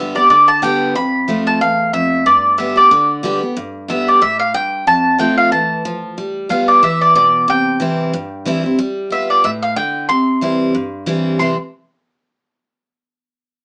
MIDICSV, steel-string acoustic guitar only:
0, 0, Header, 1, 2, 480
1, 0, Start_track
1, 0, Key_signature, 0, "major"
1, 0, Tempo, 326442
1, 1406, Time_signature, 4, 2, 24, 8
1, 20068, End_track
2, 0, Start_track
2, 0, Title_t, "Steel-string acoustic guitar"
2, 0, Program_c, 0, 25
2, 0, Note_on_c, 0, 43, 84
2, 0, Note_on_c, 0, 50, 78
2, 0, Note_on_c, 0, 55, 85
2, 0, Note_on_c, 0, 59, 91
2, 0, Note_on_c, 0, 67, 94
2, 199, Note_off_c, 0, 67, 0
2, 211, Note_off_c, 0, 50, 0
2, 217, Note_off_c, 0, 55, 0
2, 217, Note_on_c, 0, 67, 56
2, 222, Note_off_c, 0, 59, 0
2, 253, Note_on_c, 0, 59, 53
2, 402, Note_off_c, 0, 43, 0
2, 432, Note_off_c, 0, 67, 0
2, 442, Note_on_c, 0, 50, 90
2, 450, Note_off_c, 0, 59, 0
2, 894, Note_off_c, 0, 50, 0
2, 912, Note_on_c, 0, 50, 96
2, 923, Note_on_c, 0, 55, 96
2, 937, Note_on_c, 0, 59, 94
2, 945, Note_on_c, 0, 67, 104
2, 1376, Note_off_c, 0, 50, 0
2, 1382, Note_off_c, 0, 55, 0
2, 1389, Note_off_c, 0, 59, 0
2, 1393, Note_off_c, 0, 67, 0
2, 1403, Note_on_c, 0, 41, 82
2, 1878, Note_on_c, 0, 53, 78
2, 1888, Note_on_c, 0, 57, 88
2, 1900, Note_on_c, 0, 60, 85
2, 1910, Note_on_c, 0, 65, 81
2, 2319, Note_off_c, 0, 41, 0
2, 2339, Note_off_c, 0, 53, 0
2, 2344, Note_off_c, 0, 57, 0
2, 2350, Note_off_c, 0, 60, 0
2, 2355, Note_off_c, 0, 65, 0
2, 2369, Note_on_c, 0, 40, 84
2, 2824, Note_off_c, 0, 40, 0
2, 2849, Note_on_c, 0, 41, 91
2, 3303, Note_off_c, 0, 41, 0
2, 3322, Note_on_c, 0, 43, 80
2, 3791, Note_on_c, 0, 50, 84
2, 3803, Note_on_c, 0, 55, 85
2, 3818, Note_on_c, 0, 59, 92
2, 3825, Note_on_c, 0, 67, 88
2, 4036, Note_off_c, 0, 67, 0
2, 4048, Note_off_c, 0, 50, 0
2, 4053, Note_on_c, 0, 67, 59
2, 4054, Note_off_c, 0, 55, 0
2, 4061, Note_off_c, 0, 59, 0
2, 4088, Note_on_c, 0, 59, 49
2, 4238, Note_off_c, 0, 43, 0
2, 4267, Note_off_c, 0, 67, 0
2, 4280, Note_on_c, 0, 50, 97
2, 4284, Note_off_c, 0, 59, 0
2, 4731, Note_off_c, 0, 50, 0
2, 4749, Note_on_c, 0, 50, 98
2, 4761, Note_on_c, 0, 55, 98
2, 4773, Note_on_c, 0, 59, 91
2, 4782, Note_on_c, 0, 67, 97
2, 4992, Note_off_c, 0, 67, 0
2, 5006, Note_off_c, 0, 50, 0
2, 5010, Note_on_c, 0, 67, 56
2, 5012, Note_off_c, 0, 55, 0
2, 5018, Note_off_c, 0, 59, 0
2, 5044, Note_on_c, 0, 59, 49
2, 5225, Note_off_c, 0, 67, 0
2, 5242, Note_off_c, 0, 59, 0
2, 5243, Note_on_c, 0, 43, 86
2, 5711, Note_on_c, 0, 50, 86
2, 5726, Note_on_c, 0, 55, 81
2, 5735, Note_on_c, 0, 59, 85
2, 5744, Note_on_c, 0, 67, 89
2, 6157, Note_off_c, 0, 43, 0
2, 6173, Note_off_c, 0, 50, 0
2, 6181, Note_off_c, 0, 55, 0
2, 6185, Note_off_c, 0, 59, 0
2, 6190, Note_off_c, 0, 67, 0
2, 6198, Note_on_c, 0, 45, 80
2, 6657, Note_off_c, 0, 45, 0
2, 6679, Note_on_c, 0, 43, 92
2, 7137, Note_off_c, 0, 43, 0
2, 7161, Note_on_c, 0, 41, 85
2, 7624, Note_on_c, 0, 53, 78
2, 7640, Note_on_c, 0, 57, 92
2, 7650, Note_on_c, 0, 60, 83
2, 7657, Note_on_c, 0, 65, 82
2, 8076, Note_off_c, 0, 41, 0
2, 8089, Note_off_c, 0, 53, 0
2, 8097, Note_off_c, 0, 57, 0
2, 8102, Note_off_c, 0, 60, 0
2, 8106, Note_off_c, 0, 65, 0
2, 8116, Note_on_c, 0, 52, 86
2, 8575, Note_off_c, 0, 52, 0
2, 8604, Note_on_c, 0, 53, 94
2, 9060, Note_off_c, 0, 53, 0
2, 9083, Note_on_c, 0, 55, 82
2, 9529, Note_off_c, 0, 55, 0
2, 9547, Note_on_c, 0, 55, 78
2, 9564, Note_on_c, 0, 59, 84
2, 9581, Note_on_c, 0, 65, 96
2, 10011, Note_off_c, 0, 55, 0
2, 10020, Note_off_c, 0, 59, 0
2, 10028, Note_off_c, 0, 65, 0
2, 10039, Note_on_c, 0, 52, 90
2, 10498, Note_off_c, 0, 52, 0
2, 10519, Note_on_c, 0, 47, 90
2, 10978, Note_off_c, 0, 47, 0
2, 10997, Note_on_c, 0, 48, 79
2, 11465, Note_on_c, 0, 52, 92
2, 11480, Note_on_c, 0, 55, 78
2, 11493, Note_on_c, 0, 60, 87
2, 11499, Note_on_c, 0, 64, 90
2, 11916, Note_off_c, 0, 48, 0
2, 11931, Note_off_c, 0, 52, 0
2, 11938, Note_off_c, 0, 55, 0
2, 11945, Note_off_c, 0, 60, 0
2, 11948, Note_off_c, 0, 64, 0
2, 11961, Note_on_c, 0, 43, 93
2, 12431, Note_on_c, 0, 52, 82
2, 12441, Note_on_c, 0, 55, 93
2, 12455, Note_on_c, 0, 60, 99
2, 12463, Note_on_c, 0, 64, 108
2, 12680, Note_off_c, 0, 64, 0
2, 12688, Note_off_c, 0, 52, 0
2, 12693, Note_off_c, 0, 55, 0
2, 12698, Note_on_c, 0, 64, 56
2, 12700, Note_off_c, 0, 60, 0
2, 12731, Note_on_c, 0, 60, 49
2, 12878, Note_off_c, 0, 43, 0
2, 12910, Note_off_c, 0, 64, 0
2, 12918, Note_on_c, 0, 55, 86
2, 12926, Note_off_c, 0, 60, 0
2, 13370, Note_off_c, 0, 55, 0
2, 13387, Note_on_c, 0, 55, 74
2, 13406, Note_on_c, 0, 59, 78
2, 13420, Note_on_c, 0, 65, 91
2, 13853, Note_off_c, 0, 55, 0
2, 13862, Note_off_c, 0, 59, 0
2, 13869, Note_off_c, 0, 65, 0
2, 13880, Note_on_c, 0, 45, 91
2, 14340, Note_off_c, 0, 45, 0
2, 14357, Note_on_c, 0, 50, 88
2, 14818, Note_off_c, 0, 50, 0
2, 14841, Note_on_c, 0, 48, 86
2, 15312, Note_on_c, 0, 52, 75
2, 15323, Note_on_c, 0, 55, 89
2, 15332, Note_on_c, 0, 60, 83
2, 15344, Note_on_c, 0, 64, 83
2, 15759, Note_off_c, 0, 48, 0
2, 15776, Note_off_c, 0, 52, 0
2, 15782, Note_off_c, 0, 55, 0
2, 15786, Note_off_c, 0, 60, 0
2, 15792, Note_off_c, 0, 64, 0
2, 15801, Note_on_c, 0, 43, 95
2, 16267, Note_on_c, 0, 52, 95
2, 16278, Note_on_c, 0, 55, 104
2, 16290, Note_on_c, 0, 60, 90
2, 16302, Note_on_c, 0, 64, 100
2, 16720, Note_off_c, 0, 43, 0
2, 16734, Note_off_c, 0, 52, 0
2, 16740, Note_off_c, 0, 55, 0
2, 16746, Note_off_c, 0, 60, 0
2, 16752, Note_off_c, 0, 64, 0
2, 16753, Note_on_c, 0, 48, 76
2, 16766, Note_on_c, 0, 52, 87
2, 16774, Note_on_c, 0, 55, 82
2, 16784, Note_on_c, 0, 60, 81
2, 16789, Note_on_c, 0, 64, 94
2, 16969, Note_off_c, 0, 48, 0
2, 16976, Note_off_c, 0, 52, 0
2, 16979, Note_off_c, 0, 55, 0
2, 16985, Note_off_c, 0, 60, 0
2, 16987, Note_off_c, 0, 64, 0
2, 20068, End_track
0, 0, End_of_file